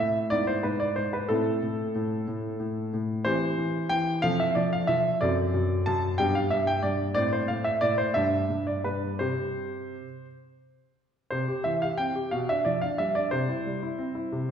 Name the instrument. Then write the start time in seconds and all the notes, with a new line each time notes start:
grand piano
Already playing: A2 C4 E4 E5
0.30 G#2 B3 E4 D5
0.47 C5
0.63 G#2 B4
0.80 D5
0.96 G#2 C5
1.13 B4
1.28 A2 C4 E4 A4
1.62 A2
1.95 A2
2.28 A2
2.60 A2
2.93 A2
3.25 E3 C4 G4 C5
3.58 E3
3.89 E3 G5
4.22 F3 C4 A4 F5
4.40 E5
4.55 F3 D5
4.73 F5
4.87 F3 E5
5.21 F#2 C4 A4 D5
5.54 F#2
5.86 F#2 A5
6.18 G2 B3 G4 G5
6.35 F5
6.50 G2 E5
6.67 G5
6.83 G2 D5
7.15 A2 C4 C5 D5
7.33 C5
7.48 A2 F5
7.64 E5
7.81 A2 D5
7.98 C5
8.14 G2 D4 G4 E5
8.50 G2
8.67 D5
8.84 G2 B4
9.19 C3 C4 G4 C5
11.30 C3 C5
11.48 G4
11.64 E3 E5
11.82 G4 F5
11.98 C4 G5
12.16 G4
12.31 B2 F5
12.49 D4 E5
12.65 F3 D5
12.81 D4 F5
12.98 G3 E5
13.15 D4 D5
13.31 C3 C5
13.49 E4
13.66 G3
13.83 E4
13.98 C4
14.15 E4
14.32 C3